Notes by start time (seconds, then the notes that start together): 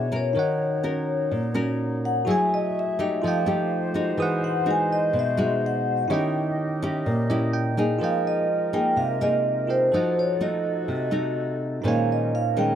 Already playing: B2 E3 G#3 D4 E4 F#4 G#4 C#5 E5 F#5
0.12 C#4 F#4 A#4
0.16 C#5
0.33 D#3 F#3 D#4 A#4 C#5
0.39 F#5
0.83 C#4 F#4 A#4
1.31 A#2
1.54 C#4 F#4 A#4
2.05 F#5
2.25 F#3 A3 E4 F#4 G#4 E5
2.31 G#5
2.54 D#5
2.79 E5
2.99 A3 D#4 G4
3.21 F3 A3 F4 G4 A4 C5
3.25 D#5 F5 G5
3.46 A3 D#4 G4
3.94 G#3 D#4 F#4
4.17 E3 G#3 F#4 G#4 D#6
4.22 F#5
4.44 F#5
4.66 G#3 D#4 F#4
4.71 G#5
4.93 D#5
5.13 B2
5.19 E5
5.37 G#3 D#4 F#4
5.66 F#5
6.08 D#3 C#4 E4 G4 C#5 D#5
6.12 D#5 G5
6.82 C#4 E4 G4
7.06 A#2
7.30 C#4 E4 G4 D#5
7.53 G5
7.77 A#3 D#4 G#4
7.99 F3 G#3 D#4 F4 G#4 A#4
8.03 D#5 F5 G5
8.27 D#5
8.73 A#3 D#4 G#4 G5
8.96 C3 F5
9.21 A#3 D#4 G#4 D#5
9.67 F4 G#4 A#4 C5 D#5 G5
9.90 F3 A3 D#4 F#4 A4 D#5
9.96 F#5
10.19 C#5
10.41 A3 D#4 F#4 D#5
10.88 C3
11.11 A3 D#4 F#4
11.82 A#2 D#3 G#3 C#4 D#4 A#4 C5
11.87 C#5 F5 G#5
12.12 D#5
12.35 F5
12.57 D#3 G#3 C#4 G5